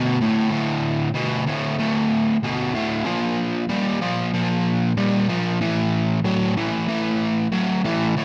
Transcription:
overdriven electric guitar
Already playing: D2 B2
0.21 D2 A2
0.50 D2 A2
1.15 D2 B2
1.47 D2 A2
1.79 D2 A2
2.43 D2 B2
2.74 D2 A2
3.05 A#2 F3
3.69 A#2 G3
4.01 A#2 F3
4.34 A#2 F3
4.97 A#2 G3
5.29 A#2 F3
5.61 A2 E3
6.24 A2 F#3
6.57 A2 E3
6.88 A2 E3
7.52 A2 F#3
7.84 A2 E3
8.17 D2 A2

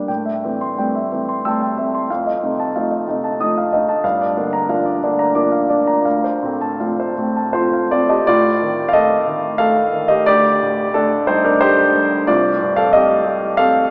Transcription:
grand piano
Already playing: G3 A#3 D4
0.08 A2 G5
0.25 E5
0.44 E3 A3 C4
0.61 C6
0.78 G3 A3 C4 G5
0.95 E5
1.12 E3 A3 C4
1.29 C6
1.45 G3 A3 C4 G5 A5 E6
1.50 C6
1.61 G5
1.77 A3 C4 E5
1.94 C6
2.10 F2 F5
2.27 D#5
2.43 C3 A3 D#4
2.60 A5
2.76 F3 A3 D#4 F5
2.91 D#5
3.08 C3 A3 D#4
3.24 A5
3.40 F3 A3 D#4 D#6
3.57 F5
3.73 A3 D#4 D#5
3.89 A5
4.04 G2 F5
4.21 D5
4.37 D3 A#3 D4
4.53 A#5
4.69 F3 A#3 D4 F5
4.86 D5
5.03 D3 A#3 D4
5.19 A#5
5.35 F3 A#3 D4 D6
5.52 F5
5.70 A#3 D4 D5
5.87 A#5
6.05 D2 F5
6.24 C5
6.43 A2 A3 C4
6.61 A5
6.80 F3 A3 C4 F5
7.00 C5
7.17 A2 A3 C4
7.37 A5
7.53 F3 A3 C4 F4 C5 C6
7.73 F5
7.91 A3 C4 F4 C5 D5
8.09 G4 D#5 A5
8.27 A2 F4 D5
8.62 D#3
8.89 F5
8.93 A3 A4 D#5
9.27 D#3
9.58 A3 A4 F5
9.92 D#3
10.08 G4 D#5
10.26 D2 G4 D5
10.62 A2
10.94 A3 D4 A4
11.27 G3 D#4 C5
11.45 D4 A#4
11.61 A3 G4 C5
11.96 G3
12.27 C2 F4 D5
12.62 G2
12.76 A4 F5
12.93 C4 G4 D#5
13.26 G4
13.57 C4 A4 F5

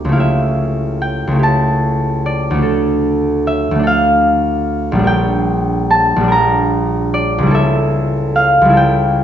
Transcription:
harp
Already playing: D2 A#3 D4 E4 G4 A#4 D5
0.05 C#2 A3
0.12 E4 F5
0.16 G4 E5
1.02 G5
1.27 C#2
1.31 A3
1.36 E4 G4
1.43 A5
2.26 D5
2.51 D2 A3
2.59 D4 A4
3.47 E5
3.71 D2
3.75 A3 D4
3.83 A4 F5
4.92 A#1 G3
4.99 D4
5.04 A#4 G5
5.91 A5
6.16 A#1
6.20 G3 D4
6.28 A#4 A#5
7.14 D5
7.38 C#2
7.43 G3 E4
7.51 A4 E5
8.36 F5
8.62 C#2 G3
8.69 E4 A4
8.77 G5

